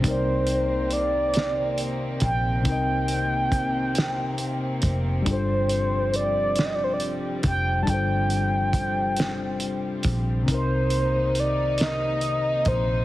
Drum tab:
HH |xxxxxx|xxxxxx|xxxxxx|xxxxxx|
SD |---o--|---o--|---o--|---o--|
BD |o----o|o-o--o|o----o|o-o--o|

HH |xxxxxx|
SD |---o--|
BD |o----o|